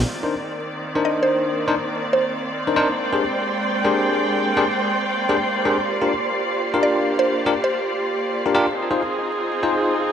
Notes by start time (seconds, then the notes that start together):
0.05 D#3 A#3 C4 C5 D5 C6
0.23 D4 D#4 A#4 C5
0.95 D4 D#4 A#4 C5
1.05 D#5
1.23 C5
1.68 D4 D#4 A#4 C5
2.13 C5
2.67 D4 D#4 A#4 C5
2.76 D4 D#4 A#4 C5
2.94 G#3 G5
3.13 D4 G4 G#4 A#4 C5
3.85 D4 G4 G#4 A#4 C5
4.57 D4 G4 G#4 A#4 C5
5.29 D4 G4 G#4 A#4 C5
5.65 D4 G4 G#4 A#4 C5
5.84 F4 G4
6.01 D4 F4 G4 A#4
6.74 D4 F4 G4 A#4
6.83 D5
7.19 C5
7.46 D4 F4 G4 A#4
7.64 C5
8.46 D4 F4 G4 A#4
8.55 D4 F4 G4 A#4
8.72 C4 D#4 F4 G#4
8.91 D#4 F4 G#4 C5
9.63 D#4 F4 G#4 C5